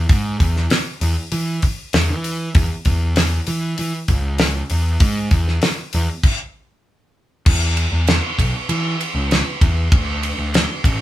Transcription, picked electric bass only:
0.09 0.36 G#2 medium
0.40 0.66 E2 medium
1.01 1.15 E2 medium
1.32 1.58 E3 loud
1.94 2.11 E2 medium
2.09 2.48 E3 medium
2.55 2.68 E2 loud
2.86 3.38 E2 medium
3.48 3.74 E3 medium
3.79 3.92 E3 medium
4.09 4.61 C#2 medium
4.70 4.96 E2 medium
5.01 5.27 G#2 loud
5.31 5.57 E2 medium
5.94 6.07 E2 loud
7.46 7.85 E2 medium
7.92 8.18 E2 medium
8.39 8.52 B1 medium
8.69 8.95 E3 loud
9.14 9.41 C#2 medium
9.61 9.87 E2 medium
9.92 10.31 D2 medium
10.38 10.64 D2 medium
10.84 10.97 A1 medium

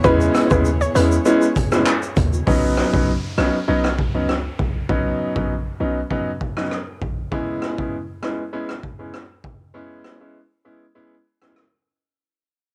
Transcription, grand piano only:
0.04 0.47 G#3 loud
0.04 0.47 B3 medium
0.04 0.47 C#4 medium
0.04 0.47 E4 loud
0.50 0.68 G#3 medium
0.50 0.68 B3 medium
0.50 0.68 C#4 medium
0.50 0.68 E4 medium
0.95 1.14 G#3 medium
0.95 1.14 B3 medium
0.95 1.14 C#4 medium
0.95 1.14 E4 medium
1.25 1.44 G#3 medium
1.25 1.44 B3 medium
1.25 1.44 C#4 medium
1.25 1.44 E4 loud
1.72 1.89 G#3 medium
1.72 1.89 B3 medium
1.72 1.89 C#4 medium
1.72 1.89 E4 medium
2.47 2.89 F#3 medium
2.47 2.89 B3 medium
2.47 2.90 C#4 medium
2.47 2.90 D#4 loud
2.93 3.10 F#3 medium
2.93 3.10 B3 medium
2.93 3.10 C#4 medium
2.93 3.10 D#4 medium
3.38 3.56 F#3 medium
3.38 3.56 B3 medium
3.38 3.56 C#4 medium
3.38 3.56 D#4 medium
3.68 3.86 F#3 medium
3.68 3.86 B3 medium
3.68 3.87 C#4 medium
3.68 3.87 D#4 loud
4.14 4.31 F#3 medium
4.14 4.31 B3 medium
4.14 4.31 C#4 medium
4.14 4.32 D#4 medium
4.89 5.32 F#3 medium
4.89 5.32 B3 medium
4.89 5.32 C#4 medium
4.89 5.32 D#4 loud
5.36 5.53 F#3 medium
5.36 5.53 B3 medium
5.36 5.53 C#4 medium
5.36 5.53 D#4 medium
5.80 5.99 F#3 medium
5.80 5.99 B3 medium
5.80 5.99 C#4 medium
5.80 5.99 D#4 medium
6.10 6.29 F#3 medium
6.10 6.29 B3 medium
6.10 6.29 C#4 medium
6.10 6.29 D#4 loud
6.57 6.74 F#3 medium
6.57 6.74 B3 medium
6.57 6.74 C#4 medium
6.57 6.74 D#4 medium
7.31 7.74 G#3 medium
7.31 7.74 B3 medium
7.31 7.74 C#4 medium
7.31 7.74 E4 loud
7.78 7.95 G#3 medium
7.78 7.95 B3 medium
7.78 7.95 C#4 medium
7.78 7.95 E4 medium
8.22 8.41 G#3 medium
8.22 8.41 B3 medium
8.22 8.41 C#4 medium
8.22 8.41 E4 medium
8.53 8.71 G#3 medium
8.53 8.71 B3 medium
8.53 8.71 C#4 medium
8.53 8.72 E4 loud
8.99 9.16 G#3 medium
8.99 9.16 B3 medium
8.99 9.16 C#4 medium
8.99 9.16 E4 medium
9.74 10.17 G#3 medium
9.74 10.17 B3 medium
9.74 10.17 C#4 medium
9.74 10.17 E4 medium
10.20 10.37 G#3 medium
10.20 10.37 B3 medium
10.20 10.38 C#4 medium
10.20 10.38 E4 medium
10.65 10.83 G#3 medium
10.65 10.83 B3 medium
10.65 10.84 C#4 medium
10.65 10.84 E4 medium
10.95 11.14 G#3 medium
10.95 11.14 B3 medium
10.95 11.14 C#4 medium
10.95 11.14 E4 medium
11.42 11.59 G#3 medium
11.42 11.59 B3 medium
11.42 11.59 C#4 medium
11.42 11.59 E4 medium

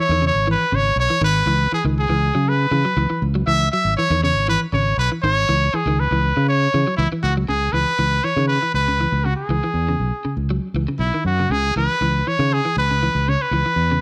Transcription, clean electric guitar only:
0.12 0.19 D#3 medium
0.22 0.39 C#3 medium
0.47 0.64 E3 medium
0.72 0.89 C#3 medium
1.10 1.18 E3 medium
1.22 1.39 D#3 medium
1.47 1.64 E3 medium
1.73 1.81 E3 medium
1.85 2.02 D#3 medium
2.10 2.27 E3 medium
2.35 2.52 F#3 medium
2.72 2.81 E3 medium
2.85 2.93 F#3 medium
2.97 3.06 E3 medium
3.10 3.27 E3 medium
3.35 3.43 F#3 medium
3.47 3.64 E3 medium
3.73 3.90 F#3 medium
3.99 4.07 E3 medium
4.11 4.19 D#3 medium
4.24 4.40 C#3 medium
4.48 4.65 E3 medium
4.74 4.90 C#3 medium
5.12 5.20 E3 medium
5.24 5.40 D#3 medium
5.49 5.65 E3 medium
5.74 5.82 E3 medium
5.87 6.04 D#3 medium
6.12 6.29 E3 medium
6.37 muted clean electric guitar stroke medium
6.74 6.83 E3 medium
6.87 6.95 F#3 medium
6.99 7.08 E3 medium
7.12 7.29 E3 medium
7.37 7.45 F#3 medium
7.49 7.66 C#3 medium
7.74 7.91 E3 medium
7.99 8.16 E3 medium
8.24 8.33 E3 medium
8.38 8.54 D#3 medium
8.62 8.79 E3 medium
8.88 8.96 C#3 medium
9.01 9.17 E3 medium
9.26 9.42 C#3 medium
9.50 9.59 E3 medium
9.64 9.80 E3 medium
9.89 10.05 C#3 medium
10.25 10.42 C#3 medium
10.50 10.67 F#3 medium
10.76 10.85 E3 medium
10.88 11.05 C#3 medium
11.14 11.31 D#3 medium
11.40 11.48 C#3 medium
11.52 11.68 C#3 medium
11.77 11.94 E3 medium
12.02 12.19 E3 medium
12.27 12.36 E3 medium
12.40 12.57 D#3 medium
12.65 12.82 E3 medium
12.91 12.99 C#3 medium
13.03 13.19 E3 medium
13.28 13.45 C#3 medium
13.53 13.61 E3 medium
13.66 13.82 E3 medium
13.92 14.01 C#3 medium

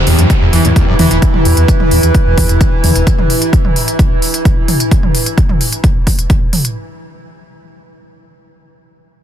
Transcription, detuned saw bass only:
0.07 0.14 E2 medium
0.19 0.26 E2 medium
0.42 0.49 E2 medium
0.53 0.60 E2 medium
0.65 0.72 E2 medium
0.99 1.07 E2 medium
1.11 1.18 E1 medium
1.45 1.53 E2 medium
1.57 1.64 E2 medium
1.91 1.99 E2 medium
2.03 2.10 E2 medium
2.26 2.33 E2 medium
2.38 2.45 E2 medium
2.49 2.57 E2 medium
2.84 2.91 E2 medium
2.96 3.03 E1 medium

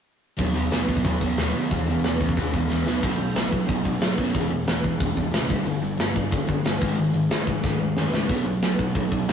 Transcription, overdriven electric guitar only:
0.37 0.54 B2 medium
0.37 0.54 F#3 medium
0.37 0.54 B3 medium
0.54 0.69 B2 medium
0.54 0.70 F#3 medium
0.54 0.71 B3 medium
0.71 0.88 B2 medium
0.71 0.88 F#3 medium
0.71 0.88 B3 medium
0.88 1.02 B2 medium
0.88 1.03 F#3 medium
0.88 1.05 B3 medium
1.04 1.20 B2 medium
1.04 1.20 F#3 medium
1.04 1.20 B3 medium
1.20 1.36 B2 medium
1.20 1.37 F#3 medium
1.20 1.38 B3 medium
1.37 1.55 B2 medium
1.37 1.54 F#3 medium
1.37 1.54 B3 medium
1.55 1.71 B2 medium
1.55 1.70 F#3 medium
1.55 2.86 B3 medium
1.71 1.88 E2 medium
1.71 1.88 B2 medium
1.71 1.87 E3 medium
1.88 2.03 E2 medium
1.88 2.04 B2 medium
1.88 2.05 E3 medium
2.04 2.21 E2 medium
2.04 2.20 B2 medium
2.04 2.19 E3 medium
2.21 2.35 E2 medium
2.21 2.37 B2 medium
2.21 2.37 E3 medium
2.36 2.52 E2 medium
2.36 2.52 B2 medium
2.36 2.51 E3 loud
2.52 2.68 E2 medium
2.52 2.68 B2 medium
2.52 2.69 E3 loud
2.69 2.85 E2 medium
2.69 2.84 B2 medium
2.69 2.85 E3 loud
2.85 3.01 B2 medium
2.85 3.01 F#3 medium
2.85 3.02 B3 medium
3.02 3.18 B2 medium
3.02 3.18 F#3 medium
3.02 3.18 B3 medium
3.19 3.34 B2 medium
3.19 3.34 F#3 medium
3.35 3.50 B2 medium
3.35 3.51 F#3 medium
3.52 3.66 B2 medium
3.52 3.66 F#3 medium
3.67 3.82 B2 medium
3.67 3.83 F#3 medium
3.85 4.00 B2 medium
3.85 4.00 F#3 medium
4.01 4.16 B2 medium
4.01 4.16 F#3 medium
4.18 4.33 B2 medium
4.18 4.33 F#3 medium
4.18 4.34 B3 medium
4.34 4.50 E2 medium
4.34 4.50 B2 medium
4.34 4.50 E3 medium
4.51 4.66 E2 medium
4.51 4.66 B2 medium
4.67 4.82 E2 medium
4.67 4.82 B2 medium
4.83 4.98 E2 medium
4.83 4.98 B2 medium
4.99 5.14 E2 medium
4.99 5.15 B2 medium
5.15 5.30 E2 medium
5.15 5.31 B2 medium
5.32 5.47 E2 medium
5.32 5.47 B2 medium
5.48 5.64 G2 medium
5.48 5.65 D3 medium
5.48 5.65 G3 medium
5.65 5.80 G2 medium
5.65 5.81 D3 medium
5.82 5.96 G2 medium
5.82 5.97 D3 medium
5.97 6.13 G2 medium
5.97 6.13 D3 medium
6.15 6.30 G2 medium
6.15 6.30 D3 medium
6.31 6.46 G2 medium
6.31 6.46 D3 medium
6.47 6.63 G2 medium
6.47 6.63 D3 medium
6.65 6.80 G2 medium
6.65 6.80 D3 medium
6.80 6.96 G#2 medium
6.80 6.97 D#3 medium
6.80 6.97 G#3 medium
6.98 7.13 G#2 medium
6.98 7.13 D#3 medium
7.14 7.29 G#2 medium
7.14 7.29 D#3 medium
7.30 7.45 G#2 medium
7.30 7.46 D#3 medium
7.47 7.62 G#2 medium
7.47 7.62 D#3 medium
7.63 7.78 G#2 medium
7.63 7.78 D#3 medium
7.79 7.94 G#2 medium
7.79 7.95 D#3 medium
7.97 8.10 G#2 medium
7.97 8.11 D#3 medium
8.11 8.28 G#2 medium
8.11 8.27 D#3 medium
8.11 8.28 G#3 medium
8.28 8.44 B2 medium
8.28 8.45 F#3 medium
8.28 8.45 B3 medium
8.45 8.60 B2 medium
8.45 8.61 F#3 medium
8.62 8.77 B2 medium
8.62 8.77 F#3 medium
8.79 8.94 B2 medium
8.79 8.94 F#3 medium
8.95 9.10 B2 medium
8.95 9.10 F#3 medium
9.12 9.27 B2 medium
9.12 9.27 F#3 medium
9.29 9.33 B2 medium
9.29 9.33 F#3 medium

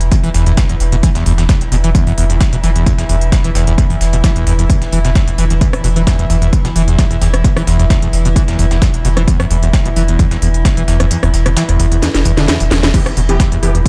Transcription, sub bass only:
0.01 0.11 E1 medium
0.24 0.34 E1 medium
0.35 0.46 E1 loud
0.47 0.57 E1 medium
0.70 0.80 E1 medium
0.80 0.92 E1 loud
0.92 1.03 E1 medium
1.15 1.26 E1 medium
1.26 1.38 E1 loud
1.38 1.49 E1 medium
1.61 1.71 E1 medium
1.72 1.83 E1 loud
1.84 1.95 E1 medium
2.07 2.17 E1 medium
2.18 2.29 E1 loud
2.30 2.40 E1 medium
2.53 2.63 E1 medium
2.64 2.75 E1 loud
2.76 2.86 E1 medium
2.98 3.09 E1 medium
3.09 3.21 E1 loud
3.21 3.32 E1 medium
3.44 3.55 E1 medium
3.55 3.67 E1 loud
3.67 3.78 E1 medium
3.90 4.00 E1 medium
4.01 4.12 E1 loud
4.13 4.24 E1 medium
4.36 4.46 E1 medium
4.47 4.58 E1 loud
4.59 4.69 E1 medium
4.82 4.92 E1 medium
4.93 5.04 E1 loud
5.05 5.15 E1 medium
5.28 5.38 E1 medium
5.38 5.50 E1 loud
5.50 5.61 E1 medium
5.73 5.84 E1 medium
5.84 5.96 E1 loud
5.96 6.07 E1 medium
6.19 6.29 E1 medium
6.30 6.41 E1 loud
6.42 6.53 E1 medium
6.65 6.75 E1 medium
6.76 6.87 E1 loud
6.88 6.98 E1 medium
7.11 7.21 E1 medium
7.22 7.33 E1 loud
7.34 7.44 E1 medium
7.56 7.67 E1 medium
7.67 7.79 E1 loud
7.79 7.90 E1 medium
8.02 8.13 E1 medium
8.13 8.25 E1 loud
8.25 8.36 E1 medium
8.48 8.58 E1 medium
8.59 8.70 E1 loud
8.71 8.82 E1 medium
8.94 9.04 E1 medium
9.05 9.16 E1 loud
9.17 9.27 E1 medium
9.40 9.50 E1 medium
9.51 9.62 E1 medium
9.63 9.73 E1 medium
9.85 9.96 E1 medium
9.96 10.08 E1 loud
10.08 10.19 E1 medium
10.31 10.41 E1 medium
10.42 10.54 E1 loud
10.54 10.65 E1 medium
10.77 10.87 E1 medium
10.88 10.99 E1 loud
11.00 11.11 E1 medium
11.23 11.33 E1 medium
11.34 11.45 E1 loud
11.46 11.56 E1 medium
11.69 11.79 E1 medium
11.79 11.91 E1 loud
11.92 12.02 E1 medium
12.14 12.25 E1 medium
12.25 12.37 E1 loud
12.37 12.48 E1 medium
12.60 12.71 E1 medium
12.71 12.83 E1 loud
12.83 12.94 E1 medium
13.06 13.16 E1 medium
13.17 13.28 E1 loud
13.29 13.40 E1 medium
13.52 13.62 E1 medium
13.63 13.74 E1 loud
13.75 13.85 E1 medium

